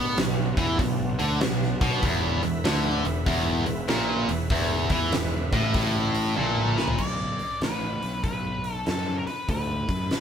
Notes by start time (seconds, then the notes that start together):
Already playing: B2 F#3 B3 D4
0.17 B1 B2, snare, open hi-hat
0.57 E2 E3, kick, open hi-hat
0.79 B1 B2, kick, open hi-hat
1.19 D2 D3, open hi-hat
1.41 B1 B2, snare, open hi-hat
1.62 snare
1.81 B1 B2, kick, open hi-hat
2.01 E1 E2 E4 B4 E5, kick, open hi-hat
2.43 E1 E2, open hi-hat
2.64 D2 D3, snare, open hi-hat
3.05 E1 E2, open hi-hat
3.26 E1 E2, kick, open hi-hat
3.66 E1 E2, open hi-hat
3.88 A#1 A#2, snare, open hi-hat
4.29 E1 E2, open hi-hat
4.50 E1 E2 E4 B4 E5, kick, open hi-hat
4.90 E2 E3, kick, snare, open hi-hat
5.12 E1 E2, snare, open hi-hat
5.52 A1 A2, kick, open hi-hat
5.74 A1 A2, kick, open hi-hat
6.15 open hi-hat
6.37 A#1 A#2 A4, high tom
6.57 mid tom
6.77 B4, snare
6.88 floor tom
6.98 B1 D5, kick, crash
7.39 muted picked electric bass stroke, open hi-hat
7.61 A1 B4, snare, open hi-hat
8.03 B1, open hi-hat
8.24 B1 B4, kick, open hi-hat
8.64 open hi-hat
8.73 A4
8.86 F#2 A4, snare, open hi-hat
9.18 A#4
9.27 B4, muted picked electric bass stroke, open hi-hat
9.49 D2 B4, kick, open hi-hat
9.89 F#2, kick, open hi-hat
10.11 muted picked electric bass stroke, snare, open hi-hat